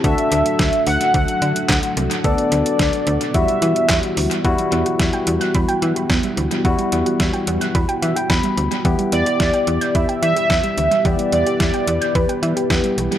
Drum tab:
HH |xxxxxxoxxxxxxxxx|xxxxxxxxxxxxxxox|xxxxxxxxxxxxxxxx|xxxxxxxxxxxxxxxx|
CP |------------x---|------------x---|----------------|----------------|
SD |----o-------o---|----o-------o---|----o-------o---|----o-------o---|
BD |o---o---o---o---|o---o---o---o---|o---o---o---o---|o---o---o---o---|

HH |xxxxxxxxxxxxxxxx|xxxxxxxxxxxxxxxx|
CP |----------------|----------------|
SD |----o-------o---|----o-------o---|
BD |o---o---o---o---|o---o---o---o---|